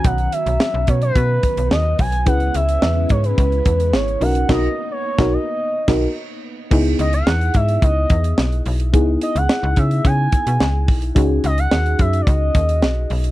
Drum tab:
CC |----------------|----------------|x---------x-----|x---------------|
HH |xxxx--xxx-xx--ox|xxxx--xxxxxx-xox|----------------|-xxx-xxxx-xx-xox|
SD |----o-------o---|----o-------o---|o----o----o-----|----o-------o---|
BD |o-----o-o-o---o-|o-----o-o-o-----|o----o----o-----|o-----o-o-o-----|

CC |----------------|----------------|
HH |x-xx--xxx-xx--ox|x-xx-xxxx-xx--ox|
SD |----o-------o---|----o-------o---|
BD |o-----o-o-o---o-|o-----o-o-o-----|